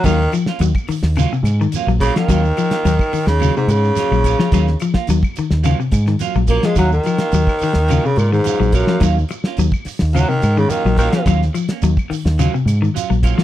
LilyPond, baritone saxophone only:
\new Staff \with { instrumentName = "Baritone saxophone" } { \clef bass \time 4/4 \key ees \dorian \tempo 4 = 107 ees8 r2. des16 ees16~ | ees4.~ ees16 des8 aes,16 des4.~ | des8 r2. bes16 aes16 | ges16 ees2 des16 bes,16 aes,8. ges,8 |
r2 ges16 ees8 des16 ees8 ees8 | r1 | }